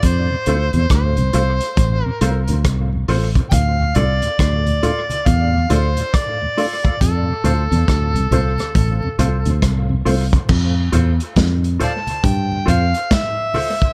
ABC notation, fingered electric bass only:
X:1
M:4/4
L:1/16
Q:"Swing 16ths" 1/4=69
K:F
V:1 name="Fingered electric bass" clef=bass
F,, z D,, E,, D,, C,, C,, z A,,, z C,, D,, C,,2 A,,, z | D,,2 C,, z D,,2 z2 E,,2 D,, z4 z | F,, z D,, E,, D,, C,, C,, z A,,, z C,, D,, C,,2 C,, z | F,,2 E,, z F,,2 z2 G,,2 F,, z4 z |]